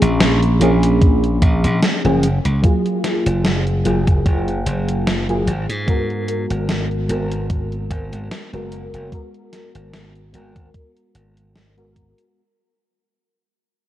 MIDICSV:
0, 0, Header, 1, 4, 480
1, 0, Start_track
1, 0, Tempo, 810811
1, 1560, Time_signature, 4, 2, 24, 8
1, 8217, End_track
2, 0, Start_track
2, 0, Title_t, "FM electric piano"
2, 0, Program_c, 0, 5
2, 0, Control_c, 0, 64, 127
2, 0, Note_on_c, 0, 53, 82
2, 0, Note_on_c, 0, 58, 71
2, 0, Note_on_c, 0, 61, 73
2, 0, Note_on_c, 0, 68, 89
2, 329, Note_off_c, 0, 53, 0
2, 332, Note_off_c, 0, 58, 0
2, 335, Note_off_c, 0, 61, 0
2, 338, Note_off_c, 0, 68, 0
2, 351, Note_on_c, 0, 53, 82
2, 357, Note_on_c, 0, 58, 73
2, 363, Note_on_c, 0, 61, 73
2, 368, Note_on_c, 0, 68, 89
2, 1180, Note_off_c, 0, 53, 0
2, 1183, Note_off_c, 0, 58, 0
2, 1186, Note_off_c, 0, 61, 0
2, 1189, Note_off_c, 0, 68, 0
2, 1207, Note_on_c, 0, 53, 84
2, 1210, Note_on_c, 0, 58, 80
2, 1213, Note_on_c, 0, 61, 79
2, 1216, Note_on_c, 0, 68, 98
2, 1302, Note_off_c, 0, 53, 0
2, 1304, Note_off_c, 0, 58, 0
2, 1305, Note_off_c, 0, 61, 0
2, 1307, Note_off_c, 0, 68, 0
2, 1326, Control_c, 0, 64, 0
2, 1437, Control_c, 0, 64, 127
2, 1550, Note_on_c, 0, 54, 81
2, 1556, Note_on_c, 0, 58, 74
2, 1562, Note_on_c, 0, 65, 75
2, 1568, Note_on_c, 0, 68, 87
2, 2249, Note_off_c, 0, 54, 0
2, 2252, Note_off_c, 0, 58, 0
2, 2255, Note_off_c, 0, 65, 0
2, 2258, Note_off_c, 0, 68, 0
2, 2271, Note_on_c, 0, 54, 78
2, 2277, Note_on_c, 0, 58, 74
2, 2282, Note_on_c, 0, 65, 75
2, 2288, Note_on_c, 0, 68, 90
2, 3100, Note_off_c, 0, 54, 0
2, 3103, Note_off_c, 0, 58, 0
2, 3106, Note_off_c, 0, 65, 0
2, 3109, Note_off_c, 0, 68, 0
2, 3127, Note_on_c, 0, 54, 86
2, 3131, Note_on_c, 0, 58, 80
2, 3133, Note_on_c, 0, 65, 78
2, 3136, Note_on_c, 0, 68, 96
2, 3222, Note_off_c, 0, 54, 0
2, 3224, Note_off_c, 0, 58, 0
2, 3225, Note_off_c, 0, 65, 0
2, 3227, Note_off_c, 0, 68, 0
2, 3249, Control_c, 0, 64, 0
2, 3363, Control_c, 0, 64, 127
2, 3472, Note_on_c, 0, 56, 80
2, 3479, Note_on_c, 0, 59, 73
2, 3483, Note_on_c, 0, 66, 74
2, 3489, Note_on_c, 0, 70, 85
2, 4170, Note_off_c, 0, 56, 0
2, 4173, Note_off_c, 0, 59, 0
2, 4175, Note_off_c, 0, 66, 0
2, 4178, Note_off_c, 0, 70, 0
2, 4192, Note_on_c, 0, 56, 76
2, 4198, Note_on_c, 0, 59, 72
2, 4204, Note_on_c, 0, 66, 69
2, 4210, Note_on_c, 0, 70, 84
2, 5021, Note_off_c, 0, 56, 0
2, 5024, Note_off_c, 0, 59, 0
2, 5027, Note_off_c, 0, 66, 0
2, 5029, Note_off_c, 0, 70, 0
2, 5046, Note_on_c, 0, 56, 88
2, 5049, Note_on_c, 0, 59, 77
2, 5052, Note_on_c, 0, 66, 74
2, 5054, Note_on_c, 0, 70, 92
2, 5142, Note_off_c, 0, 56, 0
2, 5143, Note_off_c, 0, 59, 0
2, 5145, Note_off_c, 0, 66, 0
2, 5146, Note_off_c, 0, 70, 0
2, 5390, Note_on_c, 0, 56, 80
2, 5396, Note_on_c, 0, 59, 73
2, 5402, Note_on_c, 0, 66, 69
2, 5408, Note_on_c, 0, 70, 86
2, 6089, Note_off_c, 0, 56, 0
2, 6092, Note_off_c, 0, 59, 0
2, 6095, Note_off_c, 0, 66, 0
2, 6098, Note_off_c, 0, 70, 0
2, 6111, Note_on_c, 0, 56, 75
2, 6116, Note_on_c, 0, 59, 69
2, 6122, Note_on_c, 0, 66, 70
2, 6129, Note_on_c, 0, 70, 82
2, 6940, Note_off_c, 0, 56, 0
2, 6943, Note_off_c, 0, 59, 0
2, 6946, Note_off_c, 0, 66, 0
2, 6949, Note_off_c, 0, 70, 0
2, 6965, Note_on_c, 0, 56, 81
2, 6968, Note_on_c, 0, 59, 78
2, 6970, Note_on_c, 0, 66, 77
2, 6973, Note_on_c, 0, 70, 93
2, 7061, Note_off_c, 0, 56, 0
2, 7063, Note_off_c, 0, 59, 0
2, 7064, Note_off_c, 0, 66, 0
2, 7065, Note_off_c, 0, 70, 0
2, 7328, Control_c, 0, 64, 0
2, 8217, End_track
3, 0, Start_track
3, 0, Title_t, "Slap bass"
3, 0, Program_c, 1, 36
3, 12, Note_on_c, 1, 34, 96
3, 334, Note_off_c, 1, 34, 0
3, 361, Note_on_c, 1, 34, 79
3, 813, Note_off_c, 1, 34, 0
3, 841, Note_on_c, 1, 34, 81
3, 951, Note_off_c, 1, 34, 0
3, 971, Note_on_c, 1, 34, 94
3, 1063, Note_off_c, 1, 34, 0
3, 1211, Note_on_c, 1, 30, 92
3, 1410, Note_off_c, 1, 30, 0
3, 1449, Note_on_c, 1, 37, 83
3, 1542, Note_off_c, 1, 37, 0
3, 1931, Note_on_c, 1, 30, 93
3, 2253, Note_off_c, 1, 30, 0
3, 2280, Note_on_c, 1, 30, 81
3, 2486, Note_off_c, 1, 30, 0
3, 2521, Note_on_c, 1, 30, 96
3, 2727, Note_off_c, 1, 30, 0
3, 2759, Note_on_c, 1, 30, 93
3, 3213, Note_off_c, 1, 30, 0
3, 3239, Note_on_c, 1, 32, 91
3, 3350, Note_off_c, 1, 32, 0
3, 3370, Note_on_c, 1, 44, 85
3, 3818, Note_off_c, 1, 44, 0
3, 3850, Note_on_c, 1, 32, 92
3, 4173, Note_off_c, 1, 32, 0
3, 4199, Note_on_c, 1, 32, 77
3, 4653, Note_off_c, 1, 32, 0
3, 4680, Note_on_c, 1, 32, 84
3, 4791, Note_off_c, 1, 32, 0
3, 4809, Note_on_c, 1, 32, 95
3, 4902, Note_off_c, 1, 32, 0
3, 5050, Note_on_c, 1, 30, 87
3, 5250, Note_off_c, 1, 30, 0
3, 5290, Note_on_c, 1, 30, 81
3, 5383, Note_off_c, 1, 30, 0
3, 5772, Note_on_c, 1, 32, 90
3, 6093, Note_off_c, 1, 32, 0
3, 6121, Note_on_c, 1, 32, 76
3, 6327, Note_off_c, 1, 32, 0
3, 6600, Note_on_c, 1, 32, 88
3, 7179, Note_off_c, 1, 32, 0
3, 8217, End_track
4, 0, Start_track
4, 0, Title_t, "Drums"
4, 12, Note_on_c, 9, 42, 56
4, 71, Note_off_c, 9, 42, 0
4, 121, Note_on_c, 9, 38, 113
4, 121, Note_on_c, 9, 42, 53
4, 180, Note_off_c, 9, 38, 0
4, 180, Note_off_c, 9, 42, 0
4, 252, Note_on_c, 9, 42, 27
4, 311, Note_off_c, 9, 42, 0
4, 360, Note_on_c, 9, 42, 93
4, 420, Note_off_c, 9, 42, 0
4, 492, Note_on_c, 9, 42, 53
4, 551, Note_off_c, 9, 42, 0
4, 601, Note_on_c, 9, 36, 115
4, 601, Note_on_c, 9, 42, 53
4, 660, Note_off_c, 9, 36, 0
4, 660, Note_off_c, 9, 42, 0
4, 732, Note_on_c, 9, 42, 26
4, 791, Note_off_c, 9, 42, 0
4, 841, Note_on_c, 9, 36, 97
4, 841, Note_on_c, 9, 42, 95
4, 900, Note_off_c, 9, 36, 0
4, 900, Note_off_c, 9, 42, 0
4, 971, Note_on_c, 9, 42, 53
4, 1031, Note_off_c, 9, 42, 0
4, 1080, Note_on_c, 9, 38, 112
4, 1080, Note_on_c, 9, 42, 53
4, 1139, Note_off_c, 9, 38, 0
4, 1139, Note_off_c, 9, 42, 0
4, 1212, Note_on_c, 9, 42, 27
4, 1271, Note_off_c, 9, 42, 0
4, 1320, Note_on_c, 9, 42, 94
4, 1379, Note_off_c, 9, 42, 0
4, 1450, Note_on_c, 9, 42, 54
4, 1510, Note_off_c, 9, 42, 0
4, 1560, Note_on_c, 9, 42, 51
4, 1561, Note_on_c, 9, 36, 117
4, 1620, Note_off_c, 9, 36, 0
4, 1620, Note_off_c, 9, 42, 0
4, 1691, Note_on_c, 9, 42, 26
4, 1751, Note_off_c, 9, 42, 0
4, 1800, Note_on_c, 9, 38, 60
4, 1800, Note_on_c, 9, 42, 93
4, 1860, Note_off_c, 9, 38, 0
4, 1860, Note_off_c, 9, 42, 0
4, 1932, Note_on_c, 9, 42, 59
4, 1991, Note_off_c, 9, 42, 0
4, 2040, Note_on_c, 9, 38, 117
4, 2040, Note_on_c, 9, 42, 52
4, 2099, Note_off_c, 9, 38, 0
4, 2099, Note_off_c, 9, 42, 0
4, 2171, Note_on_c, 9, 42, 25
4, 2230, Note_off_c, 9, 42, 0
4, 2280, Note_on_c, 9, 42, 89
4, 2340, Note_off_c, 9, 42, 0
4, 2411, Note_on_c, 9, 36, 101
4, 2412, Note_on_c, 9, 42, 52
4, 2471, Note_off_c, 9, 36, 0
4, 2471, Note_off_c, 9, 42, 0
4, 2521, Note_on_c, 9, 36, 116
4, 2522, Note_on_c, 9, 42, 53
4, 2580, Note_off_c, 9, 36, 0
4, 2581, Note_off_c, 9, 42, 0
4, 2652, Note_on_c, 9, 42, 26
4, 2712, Note_off_c, 9, 42, 0
4, 2762, Note_on_c, 9, 42, 94
4, 2821, Note_off_c, 9, 42, 0
4, 2892, Note_on_c, 9, 42, 52
4, 2952, Note_off_c, 9, 42, 0
4, 3002, Note_on_c, 9, 38, 116
4, 3002, Note_on_c, 9, 42, 52
4, 3062, Note_off_c, 9, 38, 0
4, 3062, Note_off_c, 9, 42, 0
4, 3133, Note_on_c, 9, 42, 27
4, 3192, Note_off_c, 9, 42, 0
4, 3242, Note_on_c, 9, 42, 93
4, 3301, Note_off_c, 9, 42, 0
4, 3372, Note_on_c, 9, 42, 51
4, 3431, Note_off_c, 9, 42, 0
4, 3480, Note_on_c, 9, 36, 117
4, 3481, Note_on_c, 9, 42, 48
4, 3540, Note_off_c, 9, 36, 0
4, 3541, Note_off_c, 9, 42, 0
4, 3613, Note_on_c, 9, 42, 24
4, 3672, Note_off_c, 9, 42, 0
4, 3720, Note_on_c, 9, 42, 89
4, 3780, Note_off_c, 9, 42, 0
4, 3851, Note_on_c, 9, 42, 54
4, 3910, Note_off_c, 9, 42, 0
4, 3960, Note_on_c, 9, 38, 122
4, 3960, Note_on_c, 9, 42, 49
4, 4019, Note_off_c, 9, 38, 0
4, 4019, Note_off_c, 9, 42, 0
4, 4092, Note_on_c, 9, 42, 24
4, 4151, Note_off_c, 9, 42, 0
4, 4200, Note_on_c, 9, 42, 88
4, 4259, Note_off_c, 9, 42, 0
4, 4331, Note_on_c, 9, 42, 50
4, 4390, Note_off_c, 9, 42, 0
4, 4440, Note_on_c, 9, 36, 117
4, 4440, Note_on_c, 9, 42, 50
4, 4499, Note_off_c, 9, 42, 0
4, 4500, Note_off_c, 9, 36, 0
4, 4571, Note_on_c, 9, 42, 24
4, 4631, Note_off_c, 9, 42, 0
4, 4680, Note_on_c, 9, 36, 104
4, 4681, Note_on_c, 9, 42, 91
4, 4739, Note_off_c, 9, 36, 0
4, 4740, Note_off_c, 9, 42, 0
4, 4812, Note_on_c, 9, 42, 51
4, 4871, Note_off_c, 9, 42, 0
4, 4921, Note_on_c, 9, 38, 119
4, 4921, Note_on_c, 9, 42, 52
4, 4980, Note_off_c, 9, 38, 0
4, 4980, Note_off_c, 9, 42, 0
4, 5052, Note_on_c, 9, 42, 26
4, 5111, Note_off_c, 9, 42, 0
4, 5161, Note_on_c, 9, 42, 91
4, 5220, Note_off_c, 9, 42, 0
4, 5292, Note_on_c, 9, 42, 52
4, 5351, Note_off_c, 9, 42, 0
4, 5400, Note_on_c, 9, 36, 107
4, 5401, Note_on_c, 9, 42, 47
4, 5459, Note_off_c, 9, 36, 0
4, 5461, Note_off_c, 9, 42, 0
4, 5532, Note_on_c, 9, 42, 22
4, 5591, Note_off_c, 9, 42, 0
4, 5641, Note_on_c, 9, 38, 56
4, 5641, Note_on_c, 9, 42, 83
4, 5700, Note_off_c, 9, 38, 0
4, 5700, Note_off_c, 9, 42, 0
4, 5772, Note_on_c, 9, 42, 54
4, 5831, Note_off_c, 9, 42, 0
4, 5881, Note_on_c, 9, 38, 113
4, 5881, Note_on_c, 9, 42, 47
4, 5940, Note_off_c, 9, 38, 0
4, 5940, Note_off_c, 9, 42, 0
4, 6011, Note_on_c, 9, 42, 24
4, 6071, Note_off_c, 9, 42, 0
4, 6121, Note_on_c, 9, 42, 84
4, 6180, Note_off_c, 9, 42, 0
4, 6251, Note_on_c, 9, 36, 102
4, 6252, Note_on_c, 9, 42, 46
4, 6311, Note_off_c, 9, 36, 0
4, 6311, Note_off_c, 9, 42, 0
4, 6361, Note_on_c, 9, 36, 110
4, 6361, Note_on_c, 9, 42, 48
4, 6420, Note_off_c, 9, 36, 0
4, 6420, Note_off_c, 9, 42, 0
4, 6493, Note_on_c, 9, 42, 23
4, 6552, Note_off_c, 9, 42, 0
4, 6601, Note_on_c, 9, 42, 87
4, 6660, Note_off_c, 9, 42, 0
4, 6732, Note_on_c, 9, 42, 46
4, 6791, Note_off_c, 9, 42, 0
4, 6841, Note_on_c, 9, 38, 114
4, 6841, Note_on_c, 9, 42, 49
4, 6900, Note_off_c, 9, 38, 0
4, 6900, Note_off_c, 9, 42, 0
4, 6972, Note_on_c, 9, 42, 24
4, 7031, Note_off_c, 9, 42, 0
4, 7081, Note_on_c, 9, 36, 59
4, 7082, Note_on_c, 9, 42, 84
4, 7140, Note_off_c, 9, 36, 0
4, 7141, Note_off_c, 9, 42, 0
4, 7213, Note_on_c, 9, 42, 47
4, 7272, Note_off_c, 9, 42, 0
4, 8217, End_track
0, 0, End_of_file